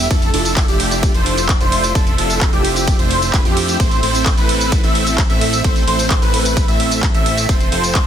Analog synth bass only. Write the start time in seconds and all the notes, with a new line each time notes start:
0.11 F1
0.34 F1
0.68 F1
1.14 F1
1.61 F1
1.95 F1
2.18 F1
2.53 F1
2.99 F1
3.34 F1
3.45 F2
3.80 A1
4.03 A1
4.38 A1
4.84 A1
5.30 A1
5.64 A1
5.87 A1
6.22 A1
6.68 A1
7.14 A1
7.49 F1
7.72 F1